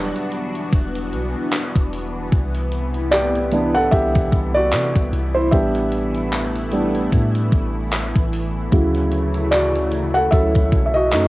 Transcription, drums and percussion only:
0.16 closed hi-hat soft
0.32 closed hi-hat medium
0.55 closed hi-hat medium
0.72 kick loud
0.72 closed hi-hat medium
0.95 closed hi-hat medium
1.13 closed hi-hat soft
1.51 clap loud
1.51 closed hi-hat medium
1.76 kick loud
1.76 closed hi-hat medium
1.93 open hi-hat medium
2.32 kick loud
2.32 closed hi-hat medium
2.55 closed hi-hat medium
2.72 closed hi-hat medium
2.95 closed hi-hat soft
3.12 clap loud
3.12 closed hi-hat medium
3.35 closed hi-hat soft
3.52 closed hi-hat medium
3.75 closed hi-hat medium
3.92 kick loud
3.92 closed hi-hat medium
4.15 kick loud
4.15 closed hi-hat medium
4.32 kick medium
4.32 closed hi-hat soft
4.72 clap loud
4.72 closed hi-hat medium
4.96 kick loud
4.96 closed hi-hat medium
5.13 closed hi-hat medium
5.52 kick loud
5.52 closed hi-hat medium
5.75 closed hi-hat medium
5.92 closed hi-hat medium
6.15 closed hi-hat soft
6.32 clap loud
6.32 closed hi-hat medium
6.56 closed hi-hat medium
6.72 closed hi-hat medium
6.95 closed hi-hat medium
7.12 kick loud
7.12 closed hi-hat medium
7.35 closed hi-hat medium
7.52 kick loud
7.52 closed hi-hat soft
7.91 clap loud
7.91 closed hi-hat medium
8.16 kick medium
8.16 closed hi-hat medium
8.33 open hi-hat medium
8.72 kick loud
8.72 closed hi-hat medium
8.95 closed hi-hat medium
9.12 closed hi-hat medium
9.34 closed hi-hat soft
9.52 clap loud
9.52 closed hi-hat medium
9.75 closed hi-hat soft
9.92 closed hi-hat medium
10.15 closed hi-hat medium
10.32 kick medium
10.32 closed hi-hat medium
10.55 kick loud
10.55 closed hi-hat medium
10.72 kick medium
10.72 closed hi-hat soft
11.11 clap loud
11.11 closed hi-hat medium

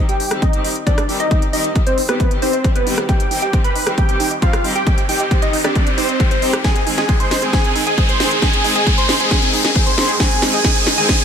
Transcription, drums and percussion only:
0.09 closed hi-hat medium
0.20 open hi-hat medium
0.31 cross-stick medium
0.31 closed hi-hat medium
0.42 kick loud
0.42 closed hi-hat medium
0.53 closed hi-hat medium
0.64 open hi-hat medium
0.76 closed hi-hat medium
0.87 kick loud
0.87 closed hi-hat medium
0.98 cross-stick medium
0.98 closed hi-hat medium
1.09 open hi-hat medium
1.20 closed hi-hat medium
1.31 kick loud
1.31 closed hi-hat medium
1.42 closed hi-hat medium
1.53 open hi-hat loud
1.64 closed hi-hat medium
1.76 kick loud
1.76 closed hi-hat medium
1.87 closed hi-hat medium
1.98 open hi-hat medium
2.09 cross-stick medium
2.09 closed hi-hat medium
2.20 kick loud
2.20 closed hi-hat medium
2.31 closed hi-hat medium
2.42 open hi-hat loud
2.53 closed hi-hat medium
2.64 kick loud
2.64 closed hi-hat medium
2.76 closed hi-hat medium
2.87 open hi-hat medium
2.98 cross-stick medium
2.98 closed hi-hat medium
3.09 kick loud
3.09 closed hi-hat medium
3.20 closed hi-hat medium
3.31 open hi-hat loud
3.42 closed hi-hat medium
3.53 kick loud
3.53 closed hi-hat medium
3.64 closed hi-hat medium
3.76 open hi-hat medium
3.87 cross-stick medium
3.87 closed hi-hat medium
3.98 kick loud
3.98 closed hi-hat medium
4.09 closed hi-hat medium
4.20 open hi-hat loud
4.31 closed hi-hat medium
4.42 kick loud
4.42 closed hi-hat medium
4.53 cross-stick medium
4.53 closed hi-hat medium
4.64 open hi-hat medium
4.76 closed hi-hat medium
4.87 kick loud
4.87 closed hi-hat medium
4.98 closed hi-hat medium
5.09 open hi-hat loud
5.20 closed hi-hat medium
5.31 kick loud
5.31 closed hi-hat medium
5.42 closed hi-hat medium
5.53 open hi-hat medium
5.64 cross-stick medium
5.64 closed hi-hat medium
5.76 kick loud
5.76 closed hi-hat medium
5.87 closed hi-hat medium
5.98 open hi-hat loud
6.09 closed hi-hat medium
6.20 kick loud
6.20 closed hi-hat medium
6.31 closed hi-hat medium
6.42 open hi-hat medium
6.53 cross-stick medium
6.53 closed hi-hat medium
6.64 kick loud
6.64 snare soft
6.64 closed hi-hat medium
6.76 closed hi-hat medium
6.87 open hi-hat loud
6.98 snare soft
6.98 closed hi-hat medium
7.09 kick loud
7.09 closed hi-hat medium
7.20 closed hi-hat medium
7.31 snare medium
7.31 open hi-hat medium
7.42 closed hi-hat medium
7.53 kick loud
7.53 snare medium
7.53 closed hi-hat medium
7.64 closed hi-hat medium
7.76 open hi-hat loud
7.87 closed hi-hat medium
7.98 kick loud
7.98 closed hi-hat medium
8.09 closed hi-hat medium
8.20 snare medium
8.20 open hi-hat medium
8.31 closed hi-hat medium
8.42 kick loud
8.42 snare medium
8.42 closed hi-hat medium
8.53 closed hi-hat medium
8.64 open hi-hat loud
8.76 closed hi-hat medium
8.87 kick loud
8.87 closed hi-hat medium
8.98 closed hi-hat medium
9.09 snare medium
9.09 open hi-hat medium
9.20 closed hi-hat medium
9.31 kick loud
9.31 snare medium
9.31 closed hi-hat medium
9.42 closed hi-hat medium
9.53 open hi-hat loud
9.64 snare medium
9.64 closed hi-hat medium
9.76 kick loud
9.76 closed hi-hat medium
9.87 closed hi-hat medium
9.98 snare medium
9.98 open hi-hat medium
10.09 closed hi-hat medium
10.20 kick loud
10.20 snare medium
10.20 closed hi-hat medium
10.31 closed hi-hat medium
10.42 snare medium
10.42 open hi-hat loud
10.53 closed hi-hat medium
10.64 kick loud
10.64 snare medium
10.64 closed hi-hat medium
10.76 closed hi-hat medium
10.87 snare medium
10.87 open hi-hat medium
10.98 closed hi-hat medium
11.09 kick loud
11.09 snare medium
11.09 closed hi-hat medium
11.20 closed hi-hat medium

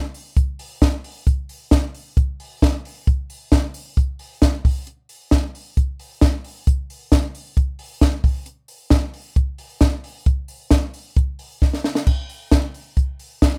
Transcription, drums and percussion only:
0.14 open hi-hat medium
0.37 kick loud
0.37 closed hi-hat medium
0.59 open hi-hat medium
0.82 kick loud
0.82 snare loud
0.82 closed hi-hat medium
1.04 open hi-hat medium
1.27 kick loud
1.27 closed hi-hat medium
1.49 open hi-hat medium
1.71 kick loud
1.71 snare loud
1.71 closed hi-hat medium
1.94 open hi-hat medium
2.17 kick loud
2.17 closed hi-hat medium
2.40 open hi-hat medium
2.62 kick loud
2.62 snare loud
2.62 closed hi-hat medium
2.85 open hi-hat medium
3.07 kick loud
3.07 closed hi-hat medium
3.30 open hi-hat medium
3.52 kick loud
3.52 snare loud
3.52 closed hi-hat medium
3.74 open hi-hat medium
3.97 kick loud
3.97 closed hi-hat medium
4.19 open hi-hat medium
4.42 kick loud
4.42 snare loud
4.42 closed hi-hat medium
4.65 kick loud
4.65 open hi-hat medium
4.87 closed hi-hat medium
5.09 open hi-hat medium
5.31 kick loud
5.31 snare loud
5.31 closed hi-hat medium
5.55 open hi-hat medium
5.77 kick loud
5.77 closed hi-hat medium
5.99 open hi-hat medium
6.21 kick loud
6.21 snare loud
6.21 closed hi-hat medium
6.44 open hi-hat medium
6.67 kick loud
6.67 closed hi-hat medium
6.90 open hi-hat medium
7.12 kick loud
7.12 snare loud
7.12 closed hi-hat medium
7.35 open hi-hat medium
7.57 kick loud
7.57 closed hi-hat medium
7.79 open hi-hat medium
8.01 kick loud
8.01 snare loud
8.01 closed hi-hat medium
8.24 kick loud
8.24 open hi-hat medium
8.46 closed hi-hat medium
8.68 open hi-hat medium
8.90 kick loud
8.90 snare loud
8.90 closed hi-hat medium
9.14 open hi-hat medium
9.36 kick loud
9.36 closed hi-hat medium
9.58 open hi-hat medium
9.81 kick loud
9.81 snare loud
9.81 closed hi-hat medium
10.04 open hi-hat medium
10.26 kick loud
10.26 closed hi-hat medium
10.48 open hi-hat medium
10.71 kick loud
10.71 snare loud
10.71 closed hi-hat medium
10.94 open hi-hat medium
11.16 kick loud
11.16 closed hi-hat medium
11.39 open hi-hat medium
11.62 kick loud
11.62 snare medium
11.73 snare medium
11.84 snare medium
11.95 snare medium
12.07 kick loud
12.07 crash medium
12.29 open hi-hat medium
12.52 kick loud
12.52 snare loud
12.52 closed hi-hat medium
12.74 open hi-hat medium
12.97 kick loud
12.97 closed hi-hat medium
13.19 open hi-hat medium
13.42 kick loud
13.42 snare loud
13.42 closed hi-hat medium

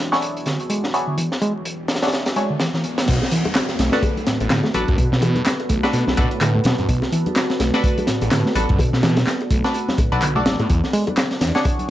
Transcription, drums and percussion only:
0.13 snare medium
0.22 closed hi-hat medium
0.37 closed hi-hat soft
0.46 snare medium
0.46 closed hi-hat medium
0.60 closed hi-hat soft
0.70 closed hi-hat medium
0.84 snare soft
0.94 closed hi-hat medium
1.18 closed hi-hat medium
1.32 snare medium
1.42 closed hi-hat medium
1.65 closed hi-hat medium
1.88 snare medium
1.88 closed hi-hat medium
1.95 snare medium
1.95 closed hi-hat medium
2.02 snare medium
2.02 closed hi-hat medium
2.07 snare medium
2.07 closed hi-hat medium
2.12 snare loud
2.12 closed hi-hat medium
2.26 snare loud
2.26 closed hi-hat medium
2.36 closed hi-hat medium
2.60 snare loud
2.60 closed hi-hat medium
2.74 snare soft
2.84 closed hi-hat medium
2.98 snare loud
2.98 closed hi-hat medium
3.07 kick loud
3.07 closed hi-hat soft
3.07 closed hi-hat medium
3.07 crash medium
3.22 snare soft
3.22 high bongo medium
3.31 closed hi-hat medium
3.45 closed hi-hat soft
3.45 high bongo medium
3.45 high conga medium
3.55 snare loud
3.55 clap loud
3.55 closed hi-hat soft
3.55 closed hi-hat medium
3.69 snare soft
3.69 closed hi-hat soft
3.79 snare medium
3.79 closed hi-hat medium
3.79 high bongo soft
3.92 snare medium
3.92 closed hi-hat soft
4.03 kick loud
4.03 closed hi-hat medium
4.03 closed hi-hat soft
4.03 high bongo medium
4.17 closed hi-hat soft
4.17 high conga medium
4.27 snare medium
4.27 closed hi-hat medium
4.40 closed hi-hat soft
4.40 high bongo medium
4.50 snare loud
4.50 clap loud
4.50 closed hi-hat medium
4.50 closed hi-hat soft
4.64 snare soft
4.64 high bongo medium
4.74 closed hi-hat medium
4.74 high conga medium
4.88 kick loud
4.88 closed hi-hat soft
4.98 kick loud
4.98 closed hi-hat medium
4.98 closed hi-hat soft
4.98 high bongo medium
5.13 snare medium
5.22 closed hi-hat medium
5.22 high bongo medium
5.35 closed hi-hat soft
5.35 high conga loud
5.45 snare loud
5.45 clap loud
5.45 closed hi-hat medium
5.45 closed hi-hat soft
5.60 closed hi-hat soft
5.60 high bongo medium
5.69 kick medium
5.69 closed hi-hat medium
5.83 snare soft
5.83 closed hi-hat soft
5.83 high bongo medium
5.93 closed hi-hat soft
5.93 closed hi-hat medium
6.07 snare medium
6.07 high conga medium
6.17 kick loud
6.17 closed hi-hat medium
6.17 high bongo medium
6.31 closed hi-hat soft
6.41 clap loud
6.41 closed hi-hat loud
6.41 closed hi-hat soft
6.41 high bongo medium
6.55 low conga medium
6.64 snare loud
6.64 closed hi-hat medium
6.64 high conga loud
6.78 closed hi-hat soft
6.78 high bongo medium
6.89 kick loud
6.89 closed hi-hat soft
6.89 closed hi-hat medium
7.02 snare soft
7.02 high bongo medium
7.12 closed hi-hat medium
7.26 closed hi-hat soft
7.26 high conga medium
7.36 snare loud
7.36 clap loud
7.36 closed hi-hat soft
7.36 closed hi-hat medium
7.36 high bongo medium
7.50 snare medium
7.50 closed hi-hat soft
7.60 snare soft
7.60 closed hi-hat medium
7.60 high bongo medium
7.74 snare medium
7.74 closed hi-hat soft
7.84 kick loud
7.84 closed hi-hat soft
7.84 closed hi-hat medium
7.98 closed hi-hat soft
7.98 high bongo medium
7.98 high conga medium
8.07 snare medium
8.07 closed hi-hat medium
8.21 closed hi-hat soft
8.21 high bongo medium
8.31 snare loud
8.31 clap loud
8.31 closed hi-hat loud
8.31 closed hi-hat soft
8.46 snare soft
8.55 closed hi-hat medium
8.55 high bongo soft
8.55 high conga loud
8.69 kick loud
8.69 closed hi-hat soft
8.79 kick loud
8.79 closed hi-hat soft
8.79 closed hi-hat medium
8.79 high bongo medium
8.93 snare medium
9.03 snare loud
9.03 closed hi-hat medium
9.16 snare loud
9.16 closed hi-hat medium
9.16 closed hi-hat soft
9.16 high bongo soft
9.16 high conga loud
9.27 snare loud
9.27 clap loud
9.27 closed hi-hat soft
9.27 closed hi-hat medium
9.41 closed hi-hat soft
9.41 high bongo medium
9.51 kick medium
9.51 closed hi-hat medium
9.64 snare medium
9.64 closed hi-hat soft
9.74 closed hi-hat soft
9.74 closed hi-hat medium
9.74 high bongo soft
9.89 snare medium
9.89 high conga medium
9.98 kick loud
9.98 closed hi-hat medium
9.98 high bongo medium
10.12 closed hi-hat soft
10.22 clap loud
10.22 closed hi-hat soft
10.22 closed hi-hat loud
10.36 high bongo medium
10.36 low conga medium
10.46 snare loud
10.46 closed hi-hat medium
10.46 high conga loud
10.60 closed hi-hat soft
10.60 high bongo medium
10.70 kick loud
10.70 closed hi-hat medium
10.70 closed hi-hat soft
10.84 snare soft
10.84 high bongo soft
10.93 closed hi-hat medium
10.93 open hi-hat medium
11.07 closed hi-hat soft
11.07 high bongo medium
11.07 high conga loud
11.17 snare loud
11.17 clap loud
11.17 closed hi-hat medium
11.17 closed hi-hat soft
11.31 snare medium
11.31 open hi-hat soft
11.41 snare soft
11.41 closed hi-hat medium
11.41 open hi-hat medium
11.41 high bongo soft
11.55 snare medium
11.55 closed hi-hat soft
11.65 kick loud
11.65 closed hi-hat soft
11.65 closed hi-hat medium
11.65 high bongo medium
11.79 closed hi-hat soft
11.79 high conga medium

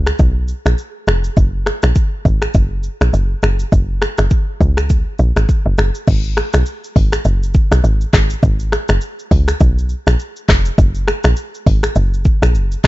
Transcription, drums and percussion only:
0.07 finger snap medium
0.07 cross-stick medium
0.07 shaker medium
0.19 kick medium
0.19 shaker medium
0.48 shaker medium
0.66 finger snap medium
0.66 cross-stick medium
0.66 shaker medium
0.78 shaker medium
1.07 finger snap medium
1.07 cross-stick loud
1.07 shaker medium
1.24 shaker medium
1.37 kick loud
1.37 shaker medium
1.66 finger snap medium
1.66 cross-stick medium
1.66 shaker medium
1.82 finger snap medium
1.82 cross-stick medium
1.82 shaker medium
1.95 kick loud
1.95 shaker medium
2.25 kick medium
2.25 shaker soft
2.42 finger snap medium
2.42 cross-stick medium
2.42 shaker medium
2.54 kick medium
2.54 shaker medium
2.83 shaker medium
3.01 finger snap medium
3.01 cross-stick medium
3.01 shaker medium
3.13 shaker medium
3.43 finger snap medium
3.43 cross-stick loud
3.43 shaker medium
3.59 shaker medium
3.72 kick loud
3.72 shaker medium
4.02 finger snap medium
4.02 cross-stick loud
4.02 shaker medium
4.18 finger snap medium
4.18 cross-stick medium
4.18 shaker medium
4.30 kick loud
4.30 shaker medium
4.61 kick medium
4.61 shaker soft
4.77 finger snap medium
4.77 cross-stick medium
4.77 shaker medium
4.89 kick medium
4.89 shaker medium
5.19 shaker medium
5.36 finger snap medium
5.36 cross-stick medium
5.36 shaker medium
5.49 kick medium
5.49 shaker medium
5.78 finger snap medium
5.78 cross-stick loud
5.78 shaker medium
5.95 shaker medium
6.07 kick loud
6.07 crash medium
6.07 shaker medium
6.24 shaker medium
6.37 finger snap medium
6.37 cross-stick loud
6.37 shaker medium
6.53 finger snap medium
6.53 cross-stick medium
6.53 shaker loud
6.66 shaker medium
6.84 shaker medium
6.96 kick medium
6.96 open hi-hat medium
6.96 shaker soft
7.12 finger snap medium
7.12 cross-stick medium
7.12 shaker loud
7.25 shaker medium
7.43 shaker medium
7.54 kick loud
7.54 shaker medium
7.72 finger snap medium
7.72 cross-stick medium
7.72 shaker medium
7.84 shaker medium
8.01 shaker medium
8.13 finger snap medium
8.13 kick loud
8.13 cross-stick loud
8.13 clap loud
8.13 open hi-hat medium
8.13 shaker medium
8.30 shaker loud
8.43 kick loud
8.43 shaker medium
8.59 shaker medium
8.72 finger snap medium
8.72 cross-stick loud
8.72 shaker medium
8.88 finger snap medium
8.88 cross-stick loud
8.88 shaker loud
9.01 shaker medium
9.19 shaker medium
9.31 kick medium
9.31 open hi-hat medium
9.31 shaker soft
9.48 finger snap medium
9.48 cross-stick medium
9.48 shaker loud
9.60 kick medium
9.60 shaker medium
9.78 shaker medium
9.89 shaker medium
10.07 finger snap medium
10.07 cross-stick medium
10.07 shaker medium
10.19 shaker medium
10.36 shaker medium
10.48 finger snap medium
10.48 kick loud
10.48 cross-stick loud
10.48 clap loud
10.48 open hi-hat medium
10.48 shaker medium
10.65 shaker loud
10.78 kick loud
10.78 shaker medium
10.95 shaker medium
11.08 finger snap medium
11.08 cross-stick loud
11.08 shaker medium
11.24 finger snap medium
11.24 cross-stick loud
11.24 shaker loud
11.36 shaker medium
11.54 shaker medium
11.66 kick medium
11.66 open hi-hat medium
11.66 shaker soft
11.83 finger snap medium
11.83 cross-stick medium
11.83 shaker loud
11.95 shaker medium
12.14 shaker medium
12.25 kick loud
12.25 shaker medium
12.43 finger snap medium
12.43 cross-stick medium
12.43 shaker medium
12.55 shaker medium
12.72 shaker medium
12.84 kick loud
12.84 open hi-hat medium
12.84 shaker medium

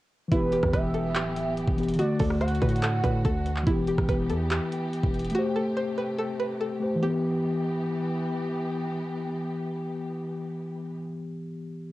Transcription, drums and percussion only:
0.31 kick loud
0.31 closed hi-hat medium
0.52 closed hi-hat medium
0.63 kick loud
0.63 cross-stick medium
0.73 kick loud
0.73 cross-stick medium
0.73 closed hi-hat medium
0.94 closed hi-hat medium
1.15 clap loud
1.15 closed hi-hat medium
1.36 closed hi-hat medium
1.57 closed hi-hat medium
1.68 kick medium
1.78 closed hi-hat medium
1.83 closed hi-hat medium
1.89 closed hi-hat medium
1.94 closed hi-hat medium
1.99 closed hi-hat medium
2.20 kick medium
2.20 open hi-hat medium
2.31 cross-stick medium
2.41 cross-stick medium
2.41 closed hi-hat soft
2.48 closed hi-hat medium
2.55 closed hi-hat medium
2.62 kick loud
2.62 closed hi-hat medium
2.69 closed hi-hat medium
2.76 closed hi-hat medium
2.83 clap loud
2.83 closed hi-hat medium
3.04 kick loud
3.04 closed hi-hat medium
3.25 kick loud
3.25 closed hi-hat medium
3.46 closed hi-hat medium
3.56 clap medium
3.67 kick loud
3.67 closed hi-hat medium
3.87 closed hi-hat medium
3.98 kick loud
3.98 cross-stick medium
4.09 kick loud
4.09 cross-stick medium
4.09 closed hi-hat medium
4.30 closed hi-hat medium
4.51 clap loud
4.51 closed hi-hat medium
4.72 closed hi-hat medium
4.93 closed hi-hat medium
5.03 kick loud
5.14 closed hi-hat medium
5.19 closed hi-hat medium
5.24 closed hi-hat medium
5.30 closed hi-hat medium

